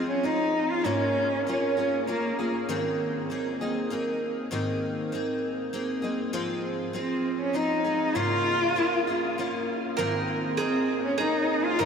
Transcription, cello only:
0.10 0.26 C#4 medium
0.25 0.72 D#4 medium
0.70 0.87 F4 medium
0.86 1.46 C#4 medium
1.48 2.04 C#4 medium
2.09 2.51 A#3 medium
6.96 7.37 C4 medium
7.41 7.57 C#4 medium
7.55 8.17 D#4 medium
8.16 9.37 F4 loud
10.61 11.02 C4 medium
11.05 11.18 C#4 medium
11.21 11.67 D#4 medium
11.65 11.82 F4 medium
11.80 11.85 D#4 medium

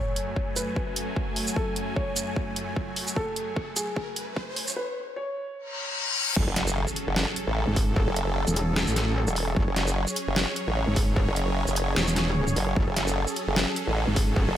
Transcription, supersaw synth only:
0.00 4.72 F#2 medium
0.00 4.72 F#3 medium
0.00 4.72 A3 medium
0.00 4.72 G#5 medium
6.36 14.57 F#3 medium
6.36 14.57 C#4 medium
6.36 14.57 G#4 medium
6.36 9.55 A4 medium
9.57 12.75 C#5 medium
12.77 14.57 A4 medium

